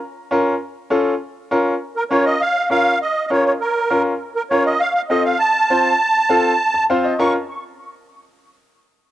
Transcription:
0.31 C#4 F4 A#4
0.90 C#4 F4 A4
1.51 C#4 F4 A#4
1.97 A#4
2.11 C#4 F4 A#4 C#5
2.26 D#5
2.41 F5
2.70 C#4 F4 A#4 F5
3.02 D#5
3.27 C#4 F4 D#5
3.31 A#4 C#5
3.46 C#5
3.61 A#4
3.90 C#4 F4 A#4
4.36 A#4
4.50 C#4 F4 A#4 C#5
4.66 D#5
4.80 F5
4.95 F5
5.10 C4 F4 A4 D#5
5.25 F5
5.39 A5
5.70 C4 F4 C5
6.29 C4 F4 A4
6.74 A5
6.90 C4 F4 C5 F5
7.04 D#5
7.19 C#4 F4 A#4 C#6

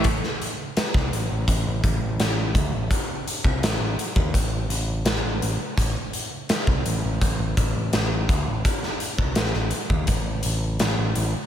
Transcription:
0.04 A1, kick, closed hi-hat
0.23 muted picked electric bass stroke, snare
0.42 closed hi-hat
0.77 muted picked electric bass stroke, snare, closed hi-hat
0.94 C2, kick, snare
1.13 A1, closed hi-hat
1.32 A1
1.48 A1, kick, closed hi-hat
1.67 A1
1.83 A1, kick, closed hi-hat
2.02 A1
2.19 A1, snare, closed hi-hat
2.54 D2, kick, closed hi-hat
2.74 A1
2.91 muted picked electric bass stroke, kick, closed hi-hat
3.28 closed hi-hat
3.44 C2, kick
3.62 A1, snare, closed hi-hat
3.80 A1
3.99 closed hi-hat
4.16 D#2, kick
4.34 A1, kick, closed hi-hat
4.69 A1, closed hi-hat
5.05 A1, snare, closed hi-hat
5.24 A1
5.42 A1, closed hi-hat
5.60 muted picked electric bass stroke
5.77 A1, kick, closed hi-hat
5.97 muted picked electric bass stroke
6.13 closed hi-hat
6.49 muted picked electric bass stroke, snare, closed hi-hat
6.67 C2, kick
6.86 A1, closed hi-hat
7.04 A1
7.21 A1, kick, closed hi-hat
7.39 A1
7.57 A1, kick, closed hi-hat
7.76 A1
7.93 A1, snare, closed hi-hat
8.29 D2, kick, closed hi-hat
8.48 A1
8.65 kick, closed hi-hat
8.83 snare
9.00 closed hi-hat
9.18 C2, kick
9.35 A1, snare, closed hi-hat
9.53 A1, snare
9.71 closed hi-hat
9.90 D#2, kick
10.07 A1, kick, closed hi-hat
10.43 A1, closed hi-hat
10.79 A1, snare, closed hi-hat
10.97 A1
11.15 A1, closed hi-hat

